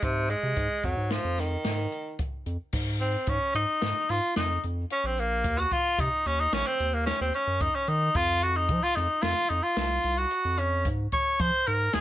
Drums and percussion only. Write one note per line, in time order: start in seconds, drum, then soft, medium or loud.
0.02 kick medium
0.02 closed hi-hat medium
0.30 closed hi-hat medium
0.56 kick loud
0.56 closed hi-hat medium
0.83 kick medium
0.83 closed hi-hat medium
1.10 snare medium
1.10 closed hi-hat medium
1.38 snare soft
1.38 closed hi-hat medium
1.64 snare medium
1.64 closed hi-hat medium
1.92 closed hi-hat medium
2.19 kick medium
2.19 closed hi-hat medium
2.46 closed hi-hat medium
2.73 kick medium
2.73 crash medium
3.00 closed hi-hat medium
3.27 kick loud
3.27 closed hi-hat medium
3.54 closed hi-hat medium
3.82 snare loud
3.82 closed hi-hat medium
4.09 snare soft
4.09 closed hi-hat medium
4.36 snare loud
4.36 closed hi-hat medium
4.63 closed hi-hat medium
4.90 closed hi-hat medium
5.18 closed hi-hat medium
5.44 kick loud
5.44 closed hi-hat medium
5.71 kick medium
5.71 closed hi-hat medium
5.98 kick loud
5.98 closed hi-hat medium
6.26 closed hi-hat medium
6.53 snare loud
6.53 closed hi-hat medium
6.80 closed hi-hat medium
7.07 snare loud
7.07 closed hi-hat medium
7.34 closed hi-hat medium
7.61 kick loud
7.61 closed hi-hat medium
7.87 closed hi-hat medium
8.15 kick loud
8.15 closed hi-hat medium
8.42 closed hi-hat medium
8.69 kick loud
8.69 closed hi-hat medium
8.96 snare soft
8.96 closed hi-hat medium
9.22 snare loud
9.22 closed hi-hat medium
9.50 closed hi-hat medium
9.77 snare loud
9.77 closed hi-hat medium
10.04 closed hi-hat medium
10.31 closed hi-hat medium
10.58 closed hi-hat medium
10.85 kick loud
10.85 closed hi-hat medium
11.12 kick medium
11.12 closed hi-hat medium
11.39 kick loud
11.39 closed hi-hat medium
11.67 closed hi-hat medium
11.93 snare loud
11.93 closed hi-hat medium